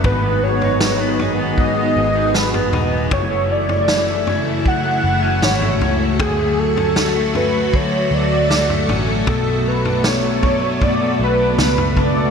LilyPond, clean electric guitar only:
\new Staff \with { instrumentName = "Clean electric guitar" } { \time 4/4 \key d \lydian \tempo 4 = 78 gis,16 b16 fis16 dis'16 fis16 b16 dis'16 b16 gis,16 b16 fis16 dis'16 fis16 b16 dis'16 b16 | fis,16 a16 e8 e16 a16 cis'16 a16 fis,16 a16 e16 cis'16 e16 a16 cis'16 a16 | d16 a16 fis16 cis'16 fis16 a16 cis'16 a16 d16 a16 fis8 fis16 a16 cis'16 a16 | b,16 a16 fis16 d'16 fis16 a16 d'16 a16 b,16 a16 fis16 d'16 fis16 a16 d'16 a16 | }